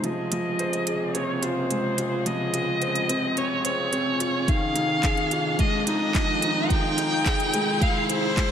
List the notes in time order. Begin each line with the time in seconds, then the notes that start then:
Already playing: C3 F4 G#4, riser
0.03 C#2 C#3 F3 D#5, closed hi-hat
0.32 F3, closed hi-hat
0.59 C5, closed hi-hat
0.73 closed hi-hat
0.87 G#4, closed hi-hat
1.15 C4 C#5, closed hi-hat
1.43 F4 C5, closed hi-hat
1.71 G#3, closed hi-hat
1.98 F4, closed hi-hat
2.26 F3 D#5, closed hi-hat
2.54 F4, closed hi-hat
2.82 C5, closed hi-hat
2.95 closed hi-hat
3.09 C4, closed hi-hat
3.37 C4 C#5, closed hi-hat
3.65 C5 C#5, closed hi-hat
3.93 C4, closed hi-hat
4.20 F4, closed hi-hat
4.48 F2 D#3 F5, kick, closed hi-hat
4.76 D#3, closed hi-hat
5.03 G#4, kick, clap, closed hi-hat
5.17 closed hi-hat
5.31 F4, closed hi-hat
5.55 F4, kick, closed hi-hat
5.59 G#3 D#5
5.87 D#4 D#5, closed hi-hat
6.15 F3, kick, clap, closed hi-hat
6.42 D#4, closed hi-hat
6.70 D#3 G5, kick, closed hi-hat
6.98 D#4, closed hi-hat
7.26 G#4, kick, clap, closed hi-hat
7.40 closed hi-hat
7.54 G#3, closed hi-hat
7.81 G#3 F5, kick, closed hi-hat
8.09 G#4 C5, closed hi-hat
8.37 G#3, kick, clap, closed hi-hat